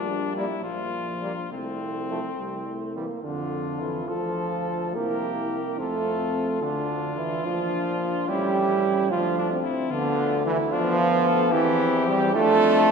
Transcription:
0.00 0.49 A#1 medium
0.00 0.65 G3 medium
0.00 0.35 D4 medium
0.36 0.46 G3 medium
0.36 0.46 A#3 medium
0.36 0.63 E4 medium
0.63 1.36 A#1 medium
0.63 1.51 F3 medium
0.63 1.50 F4 medium
1.22 1.32 G3 medium
1.22 1.33 A#3 medium
1.51 2.24 C2 medium
1.51 2.31 A3 medium
1.51 2.94 C4 medium
2.10 2.20 F3 soft
2.10 2.20 A3 soft
2.38 3.10 C2 soft
2.38 2.69 G3 medium
2.67 2.95 A3 medium
2.95 3.06 E3 soft
2.95 3.06 G3 soft
2.95 3.23 A#3 medium
3.23 4.05 F2 soft
3.23 3.82 D3 medium
3.23 3.81 D4 medium
3.23 4.10 F4 medium
3.23 4.05 A4 medium
3.80 4.07 E3 medium
3.80 4.09 E4 medium
4.08 4.97 D2 soft
4.08 4.97 F3 medium
4.08 4.95 F4 medium
4.08 4.94 A4 medium
4.08 4.95 A4 medium
4.95 5.81 C2 soft
4.95 5.63 A#3 medium
4.95 5.80 E4 medium
4.95 5.78 G4 medium
4.95 5.78 A#4 medium
5.79 6.63 F2 medium
5.79 6.60 A3 medium
5.79 6.61 C4 medium
5.79 6.60 F4 medium
5.79 6.65 A4 medium
6.61 7.43 D2 medium
6.61 7.16 D3 medium
6.61 7.43 D4 medium
6.61 7.19 D4 medium
6.61 8.30 F4 medium
7.17 7.46 E3 medium
7.17 7.45 E4 medium
7.44 8.29 A#1 medium
7.44 8.28 F3 medium
7.44 8.30 D4 medium
7.44 8.30 F4 medium
8.27 9.12 A1 medium
8.27 9.12 G3 loud
8.27 9.12 C#4 medium
8.27 9.10 E4 medium
8.27 9.11 G4 medium
9.10 9.64 D2 medium
9.10 9.64 F3 loud
9.10 9.50 D4 medium
9.10 9.37 F4 medium
9.10 9.64 F4 medium
9.38 9.50 D4 medium
9.50 9.92 C4 medium
9.63 9.92 E4 medium
9.91 11.53 D2 medium
9.91 10.42 D3 loud
9.91 10.45 B3 medium
9.91 10.42 D4 medium
9.91 10.45 F4 medium
10.46 10.58 E3 loud
10.46 10.73 E4 medium
10.71 11.54 F3 loud
10.71 11.54 B3 medium
10.71 11.00 D4 medium
10.71 11.51 F4 loud
10.98 11.27 F4 medium
11.26 11.53 A4 medium
11.52 12.35 E2 medium
11.52 12.10 E3 loud
11.52 12.35 C4 medium
11.52 12.06 E4 loud
11.52 12.34 G4 medium
12.07 12.36 G3 loud
12.07 12.34 G4 medium
12.33 12.91 F2 medium
12.33 12.91 A3 loud
12.33 12.91 D4 medium
12.33 12.91 F4 medium
12.33 12.91 A4 loud

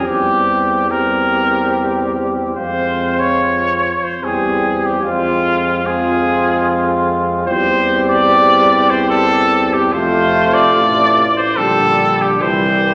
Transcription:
0.05 2.56 E2 medium
0.05 0.88 G3 medium
0.05 0.88 C4 medium
0.05 0.88 G4 medium
0.05 0.92 G4 medium
0.89 2.53 G3 medium
0.89 2.52 C4 medium
0.89 2.53 G4 medium
0.89 2.15 A#4 medium
2.56 3.92 F2 medium
2.56 3.92 G#3 medium
2.56 3.92 C4 soft
2.56 3.92 F4 medium
2.56 3.21 C5 medium
3.20 4.05 C#5 medium
4.03 4.25 C5 medium
4.22 5.00 E2 medium
4.22 5.06 G3 medium
4.22 5.00 C4 soft
4.22 5.04 G4 medium
4.22 4.87 G#4 medium
4.85 5.04 G4 medium
5.03 7.43 F2 medium
5.03 5.84 G#3 medium
5.03 5.84 C4 medium
5.03 5.84 F4 medium
5.03 5.88 F4 medium
5.85 7.49 G#3 medium
5.85 7.44 C4 medium
5.85 7.44 F4 medium
5.85 7.07 G#4 medium
7.47 9.89 E2 medium
7.47 9.92 G3 medium
7.47 9.89 C4 medium
7.47 9.89 G4 medium
7.47 8.04 C5 medium
8.09 8.92 D5 loud
8.90 9.09 C5 medium
9.10 9.74 A4 loud
9.73 9.94 G4 medium
9.93 10.47 F2 medium
9.93 11.26 C3 medium
9.93 11.26 A3 medium
9.93 11.27 F4 medium
9.93 10.55 C5 loud
10.54 11.36 D5 loud
10.76 11.53 A1 medium
11.37 11.58 C5 medium
11.57 12.40 A#1 medium
11.57 12.43 D3 medium
11.57 12.38 G3 medium
11.57 12.38 G4 medium
11.57 12.23 A4 loud
12.21 12.43 G4 medium
12.41 12.94 C2 medium
12.41 12.94 E3 medium
12.41 12.94 G3 medium
12.41 12.94 G4 medium
12.41 12.94 C5 loud

